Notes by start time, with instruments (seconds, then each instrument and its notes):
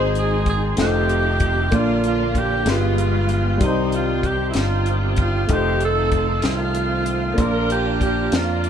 Already playing: fingered electric bass G#1, grand piano G#2 G#3 C4 D#4 C5, tonewheel organ D#3 G#3 C4 G#4, string section D#4 G#4 C5
0.15 string section G#4, closed hi-hat
0.19 alto saxophone G#4
0.46 string section G#4, alto saxophone G#4, kick, closed hi-hat
0.77 fingered electric bass F1, tonewheel organ D#3 A3 C4 F4, grand piano A3 D#4 F4 C5, string section G4, snare, closed hi-hat
0.81 string section C4 D#4, alto saxophone G4
1.09 closed hi-hat
1.40 kick, closed hi-hat
1.71 fingered electric bass A#1, grand piano A#2 A#3 D4 F4 D5, tonewheel organ C#3 F3 A#3 F4, string section D4 F4, kick, closed hi-hat
1.75 string section A#3, alto saxophone F4
1.80 tonewheel organ D3
2.04 string section F4, alto saxophone F4, closed hi-hat
2.35 string section G4, alto saxophone G4, kick, closed hi-hat
2.66 fingered electric bass G1, grand piano G2 G#3 F4 G4 B4, tonewheel organ F3 G#3 B3 G4, string section F4, snare, closed hi-hat
2.70 string section G#3 B3, alto saxophone F4
2.98 closed hi-hat
3.29 closed hi-hat
3.58 fingered electric bass C2, tonewheel organ D#3 G3 C4 G4, grand piano G3 C4, kick, closed hi-hat
3.62 grand piano C3 D#4 C5, string section G3 C4 D#4, alto saxophone D#4
3.92 string section F4, alto saxophone F4, closed hi-hat
4.23 string section G4, alto saxophone G4, kick, closed hi-hat
4.50 alto saxophone E4, closed hi-hat
4.55 fingered electric bass G1, string section C4 F4, alto saxophone F4, snare
4.86 closed hi-hat
5.16 kick, closed hi-hat
5.21 alto saxophone F4
5.46 fingered electric bass F1, tonewheel organ D#3 A3 C4 D#4, grand piano A3 D#4, string section G4, kick, closed hi-hat
5.51 string section C4 D#4, grand piano F4 C5, alto saxophone G4
5.56 tonewheel organ F4
5.80 string section C4 D#4 A4, closed hi-hat
5.85 alto saxophone A4
6.12 kick, closed hi-hat
6.42 fingered electric bass C2, string section F4, snare, closed hi-hat
6.46 string section A3 C4, alto saxophone F4
6.75 closed hi-hat
7.06 closed hi-hat
7.34 fingered electric bass A#1, grand piano A#3 D4, closed hi-hat
7.38 grand piano A#2 F4 D5, tonewheel organ F3 A#3 D4 A#4, string section D4 F4 A#4, alto saxophone A#4, kick
7.69 string section G4, alto saxophone G4, closed hi-hat
8.00 string section G4, alto saxophone G4, kick, closed hi-hat
8.31 fingered electric bass F2, string section A#3 D4 F4, snare, closed hi-hat
8.35 alto saxophone F4
8.64 closed hi-hat